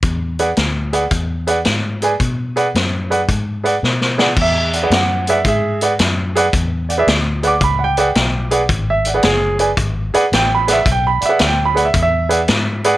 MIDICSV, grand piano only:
0, 0, Header, 1, 2, 480
1, 0, Start_track
1, 0, Tempo, 541516
1, 28, Time_signature, 4, 2, 24, 8
1, 11501, End_track
2, 0, Start_track
2, 0, Title_t, "Grand piano"
2, 0, Program_c, 0, 0
2, 350, Note_on_c, 0, 68, 66
2, 350, Note_on_c, 0, 71, 66
2, 355, Note_on_c, 0, 74, 65
2, 355, Note_on_c, 0, 78, 78
2, 429, Note_off_c, 0, 68, 0
2, 429, Note_off_c, 0, 71, 0
2, 432, Note_off_c, 0, 74, 0
2, 432, Note_off_c, 0, 78, 0
2, 822, Note_on_c, 0, 68, 67
2, 827, Note_on_c, 0, 71, 60
2, 831, Note_on_c, 0, 74, 60
2, 833, Note_on_c, 0, 78, 78
2, 906, Note_off_c, 0, 68, 0
2, 908, Note_off_c, 0, 71, 0
2, 910, Note_off_c, 0, 74, 0
2, 911, Note_off_c, 0, 78, 0
2, 1303, Note_on_c, 0, 68, 68
2, 1306, Note_on_c, 0, 71, 68
2, 1313, Note_on_c, 0, 74, 69
2, 1317, Note_on_c, 0, 78, 81
2, 1387, Note_off_c, 0, 68, 0
2, 1388, Note_off_c, 0, 71, 0
2, 1392, Note_off_c, 0, 74, 0
2, 1394, Note_off_c, 0, 78, 0
2, 1795, Note_on_c, 0, 68, 73
2, 1802, Note_on_c, 0, 71, 65
2, 1808, Note_on_c, 0, 80, 77
2, 1810, Note_on_c, 0, 74, 62
2, 1873, Note_off_c, 0, 68, 0
2, 1877, Note_off_c, 0, 71, 0
2, 1880, Note_off_c, 0, 74, 0
2, 1880, Note_off_c, 0, 80, 0
2, 2268, Note_on_c, 0, 68, 73
2, 2274, Note_on_c, 0, 74, 70
2, 2275, Note_on_c, 0, 71, 73
2, 2279, Note_on_c, 0, 78, 82
2, 2350, Note_off_c, 0, 68, 0
2, 2353, Note_off_c, 0, 71, 0
2, 2353, Note_off_c, 0, 74, 0
2, 2355, Note_off_c, 0, 78, 0
2, 2749, Note_on_c, 0, 68, 65
2, 2755, Note_on_c, 0, 71, 64
2, 2759, Note_on_c, 0, 78, 78
2, 2760, Note_on_c, 0, 74, 63
2, 2831, Note_off_c, 0, 68, 0
2, 2834, Note_off_c, 0, 71, 0
2, 2836, Note_off_c, 0, 74, 0
2, 2836, Note_off_c, 0, 78, 0
2, 3222, Note_on_c, 0, 68, 67
2, 3227, Note_on_c, 0, 71, 66
2, 3236, Note_on_c, 0, 74, 68
2, 3236, Note_on_c, 0, 78, 79
2, 3307, Note_off_c, 0, 68, 0
2, 3310, Note_off_c, 0, 71, 0
2, 3314, Note_off_c, 0, 74, 0
2, 3314, Note_off_c, 0, 78, 0
2, 3704, Note_on_c, 0, 68, 66
2, 3707, Note_on_c, 0, 71, 66
2, 3709, Note_on_c, 0, 74, 69
2, 3716, Note_on_c, 0, 78, 84
2, 3788, Note_off_c, 0, 68, 0
2, 3790, Note_off_c, 0, 71, 0
2, 3791, Note_off_c, 0, 74, 0
2, 3794, Note_off_c, 0, 78, 0
2, 3913, Note_on_c, 0, 76, 90
2, 4194, Note_on_c, 0, 74, 42
2, 4202, Note_on_c, 0, 78, 43
2, 4234, Note_off_c, 0, 74, 0
2, 4237, Note_off_c, 0, 78, 0
2, 4277, Note_on_c, 0, 68, 57
2, 4283, Note_on_c, 0, 71, 58
2, 4287, Note_on_c, 0, 74, 56
2, 4291, Note_on_c, 0, 78, 66
2, 4354, Note_off_c, 0, 68, 0
2, 4357, Note_off_c, 0, 71, 0
2, 4359, Note_off_c, 0, 74, 0
2, 4359, Note_off_c, 0, 76, 0
2, 4362, Note_off_c, 0, 78, 0
2, 4383, Note_on_c, 0, 78, 75
2, 4679, Note_off_c, 0, 78, 0
2, 4684, Note_on_c, 0, 68, 65
2, 4692, Note_on_c, 0, 71, 59
2, 4693, Note_on_c, 0, 74, 64
2, 4697, Note_on_c, 0, 76, 74
2, 4699, Note_on_c, 0, 78, 73
2, 4758, Note_off_c, 0, 68, 0
2, 4762, Note_off_c, 0, 71, 0
2, 4763, Note_off_c, 0, 74, 0
2, 4766, Note_off_c, 0, 78, 0
2, 4840, Note_off_c, 0, 76, 0
2, 4844, Note_on_c, 0, 68, 74
2, 4857, Note_on_c, 0, 76, 80
2, 5137, Note_off_c, 0, 68, 0
2, 5157, Note_off_c, 0, 76, 0
2, 5157, Note_on_c, 0, 68, 70
2, 5162, Note_on_c, 0, 71, 60
2, 5166, Note_on_c, 0, 74, 66
2, 5167, Note_on_c, 0, 78, 75
2, 5234, Note_off_c, 0, 68, 0
2, 5237, Note_off_c, 0, 71, 0
2, 5239, Note_off_c, 0, 74, 0
2, 5240, Note_off_c, 0, 78, 0
2, 5633, Note_on_c, 0, 68, 85
2, 5643, Note_on_c, 0, 71, 73
2, 5643, Note_on_c, 0, 74, 75
2, 5650, Note_on_c, 0, 78, 91
2, 5712, Note_off_c, 0, 68, 0
2, 5717, Note_off_c, 0, 71, 0
2, 5717, Note_off_c, 0, 74, 0
2, 5721, Note_off_c, 0, 78, 0
2, 6106, Note_on_c, 0, 74, 52
2, 6118, Note_on_c, 0, 78, 55
2, 6149, Note_off_c, 0, 74, 0
2, 6155, Note_off_c, 0, 78, 0
2, 6185, Note_on_c, 0, 68, 76
2, 6186, Note_on_c, 0, 71, 68
2, 6195, Note_on_c, 0, 74, 70
2, 6197, Note_on_c, 0, 76, 88
2, 6268, Note_off_c, 0, 68, 0
2, 6268, Note_off_c, 0, 71, 0
2, 6273, Note_off_c, 0, 74, 0
2, 6274, Note_off_c, 0, 76, 0
2, 6584, Note_on_c, 0, 68, 66
2, 6592, Note_on_c, 0, 71, 62
2, 6596, Note_on_c, 0, 74, 61
2, 6602, Note_on_c, 0, 78, 75
2, 6626, Note_on_c, 0, 86, 78
2, 6667, Note_off_c, 0, 68, 0
2, 6671, Note_off_c, 0, 71, 0
2, 6674, Note_off_c, 0, 74, 0
2, 6677, Note_off_c, 0, 78, 0
2, 6764, Note_off_c, 0, 86, 0
2, 6771, Note_on_c, 0, 83, 81
2, 6904, Note_on_c, 0, 78, 61
2, 6916, Note_off_c, 0, 83, 0
2, 6950, Note_on_c, 0, 79, 89
2, 6958, Note_off_c, 0, 78, 0
2, 7070, Note_on_c, 0, 71, 63
2, 7072, Note_on_c, 0, 68, 71
2, 7072, Note_on_c, 0, 74, 68
2, 7085, Note_on_c, 0, 78, 79
2, 7150, Note_off_c, 0, 71, 0
2, 7151, Note_off_c, 0, 68, 0
2, 7151, Note_off_c, 0, 74, 0
2, 7158, Note_off_c, 0, 78, 0
2, 7542, Note_on_c, 0, 68, 71
2, 7548, Note_on_c, 0, 71, 59
2, 7552, Note_on_c, 0, 74, 65
2, 7555, Note_on_c, 0, 78, 75
2, 7626, Note_off_c, 0, 68, 0
2, 7629, Note_off_c, 0, 71, 0
2, 7631, Note_off_c, 0, 74, 0
2, 7633, Note_off_c, 0, 78, 0
2, 7861, Note_off_c, 0, 79, 0
2, 7890, Note_on_c, 0, 76, 83
2, 8034, Note_on_c, 0, 74, 44
2, 8035, Note_off_c, 0, 76, 0
2, 8045, Note_on_c, 0, 78, 48
2, 8072, Note_off_c, 0, 74, 0
2, 8078, Note_off_c, 0, 78, 0
2, 8104, Note_on_c, 0, 71, 58
2, 8105, Note_on_c, 0, 68, 65
2, 8112, Note_on_c, 0, 74, 59
2, 8117, Note_on_c, 0, 78, 71
2, 8185, Note_off_c, 0, 68, 0
2, 8186, Note_off_c, 0, 71, 0
2, 8190, Note_off_c, 0, 74, 0
2, 8193, Note_off_c, 0, 78, 0
2, 8198, Note_on_c, 0, 68, 91
2, 8486, Note_off_c, 0, 68, 0
2, 8499, Note_on_c, 0, 68, 70
2, 8505, Note_on_c, 0, 74, 62
2, 8507, Note_on_c, 0, 71, 61
2, 8515, Note_on_c, 0, 80, 69
2, 8584, Note_off_c, 0, 68, 0
2, 8587, Note_off_c, 0, 74, 0
2, 8588, Note_off_c, 0, 71, 0
2, 8592, Note_off_c, 0, 80, 0
2, 8986, Note_on_c, 0, 68, 90
2, 8993, Note_on_c, 0, 71, 79
2, 8994, Note_on_c, 0, 74, 81
2, 8997, Note_on_c, 0, 78, 95
2, 9067, Note_off_c, 0, 68, 0
2, 9071, Note_off_c, 0, 71, 0
2, 9071, Note_off_c, 0, 74, 0
2, 9073, Note_off_c, 0, 78, 0
2, 9171, Note_on_c, 0, 79, 95
2, 9315, Note_off_c, 0, 79, 0
2, 9348, Note_on_c, 0, 83, 80
2, 9461, Note_on_c, 0, 68, 71
2, 9467, Note_on_c, 0, 71, 61
2, 9472, Note_on_c, 0, 74, 62
2, 9475, Note_on_c, 0, 78, 76
2, 9484, Note_off_c, 0, 83, 0
2, 9507, Note_on_c, 0, 76, 87
2, 9544, Note_off_c, 0, 68, 0
2, 9547, Note_off_c, 0, 71, 0
2, 9550, Note_off_c, 0, 74, 0
2, 9551, Note_off_c, 0, 78, 0
2, 9643, Note_off_c, 0, 76, 0
2, 9677, Note_on_c, 0, 79, 85
2, 9808, Note_off_c, 0, 79, 0
2, 9812, Note_on_c, 0, 83, 76
2, 9936, Note_on_c, 0, 74, 44
2, 9949, Note_on_c, 0, 78, 49
2, 9955, Note_off_c, 0, 83, 0
2, 9977, Note_on_c, 0, 76, 83
2, 9982, Note_off_c, 0, 74, 0
2, 9989, Note_off_c, 0, 78, 0
2, 10005, Note_on_c, 0, 68, 62
2, 10009, Note_on_c, 0, 71, 55
2, 10009, Note_on_c, 0, 74, 60
2, 10015, Note_on_c, 0, 78, 74
2, 10095, Note_off_c, 0, 68, 0
2, 10098, Note_off_c, 0, 71, 0
2, 10098, Note_off_c, 0, 74, 0
2, 10101, Note_off_c, 0, 78, 0
2, 10117, Note_off_c, 0, 76, 0
2, 10127, Note_on_c, 0, 78, 59
2, 10154, Note_off_c, 0, 78, 0
2, 10167, Note_on_c, 0, 79, 91
2, 10293, Note_off_c, 0, 79, 0
2, 10331, Note_on_c, 0, 83, 81
2, 10413, Note_on_c, 0, 68, 65
2, 10421, Note_on_c, 0, 71, 61
2, 10425, Note_on_c, 0, 74, 62
2, 10428, Note_on_c, 0, 78, 77
2, 10455, Note_off_c, 0, 83, 0
2, 10500, Note_off_c, 0, 68, 0
2, 10504, Note_off_c, 0, 71, 0
2, 10505, Note_on_c, 0, 76, 73
2, 10506, Note_off_c, 0, 74, 0
2, 10507, Note_off_c, 0, 78, 0
2, 10622, Note_off_c, 0, 76, 0
2, 10659, Note_on_c, 0, 76, 89
2, 10895, Note_on_c, 0, 68, 68
2, 10897, Note_on_c, 0, 71, 65
2, 10902, Note_on_c, 0, 74, 62
2, 10908, Note_on_c, 0, 78, 73
2, 10980, Note_off_c, 0, 68, 0
2, 10982, Note_off_c, 0, 71, 0
2, 10984, Note_off_c, 0, 74, 0
2, 10987, Note_off_c, 0, 78, 0
2, 11388, Note_on_c, 0, 68, 87
2, 11390, Note_on_c, 0, 71, 76
2, 11394, Note_on_c, 0, 74, 72
2, 11398, Note_on_c, 0, 78, 85
2, 11466, Note_off_c, 0, 68, 0
2, 11468, Note_off_c, 0, 71, 0
2, 11470, Note_off_c, 0, 74, 0
2, 11472, Note_off_c, 0, 78, 0
2, 11501, Note_off_c, 0, 76, 0
2, 11501, End_track
0, 0, End_of_file